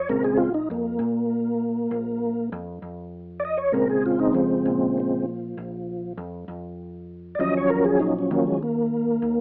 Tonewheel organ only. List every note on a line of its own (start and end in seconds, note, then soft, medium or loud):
0.09 0.49 C#3 medium
0.09 0.49 G#3 soft
0.09 0.50 C4 medium
0.09 0.23 A#4 medium
0.24 0.38 G#4 medium
0.37 0.52 F4 loud
0.54 0.68 D#4 medium
0.71 2.49 A#3 medium
3.40 3.43 D5 medium
3.45 3.59 D#5 loud
3.57 3.72 C#5 medium
3.72 4.98 C#3 soft
3.72 4.34 G#3 soft
3.72 4.99 C4 medium
3.72 3.88 A#4 medium
3.90 4.04 G#4 medium
4.06 4.19 F4 medium
4.19 4.34 D#4 medium
4.33 6.13 F3 medium
4.33 4.97 G#3 loud
4.98 5.25 C#3 medium
4.98 5.25 G#3 soft
4.98 5.26 C4 soft
7.35 7.39 D5 medium
7.39 8.29 F3 medium
7.39 8.31 F#3 soft
7.39 8.17 C#4 soft
7.39 7.54 D#5 loud
7.57 7.70 C#5 medium
7.70 7.84 A#4 medium
7.85 7.99 G#4 medium
8.00 8.14 D#4 medium
8.19 8.31 C#4 medium
8.31 8.58 F3 soft
8.31 8.59 F#3 soft
8.31 8.46 A#3 medium
8.31 8.59 C#4 medium
8.47 8.61 G#3 medium
8.62 9.41 A#3 loud